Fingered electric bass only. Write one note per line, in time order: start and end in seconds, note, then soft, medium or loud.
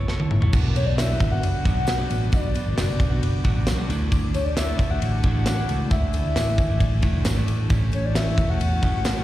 0.00 0.24 F#1 medium
0.31 0.50 A1 medium
0.53 0.72 B1 loud
0.76 1.14 B1 medium
1.20 1.40 G#1 medium
1.43 1.62 F#1 medium
1.65 2.03 B1 medium
2.11 2.29 A1 medium
2.33 2.61 B1 loud
2.66 2.76 G#1 medium
2.78 2.97 F#1 medium
3.00 3.19 B1 medium
3.22 3.41 F#1 loud
3.45 3.64 A1 medium
3.67 3.86 B1 medium
3.89 4.27 D2 medium
4.34 4.72 D2 loud
4.79 4.98 D2 loud
5.02 5.21 A1 medium
5.24 5.62 A1 medium
5.69 5.88 C#2 medium
5.91 6.20 D2 loud
6.25 6.34 D2 medium
6.36 6.55 A1 medium
6.58 6.77 G#1 medium
6.80 7.00 A1 medium
7.03 7.22 E1 medium
7.25 7.45 G#1 medium
7.48 7.67 A1 medium
7.70 7.90 A1 loud
7.93 8.31 A1 medium
8.38 8.57 E1 medium
8.60 8.79 E2 medium
8.83 9.21 A2 medium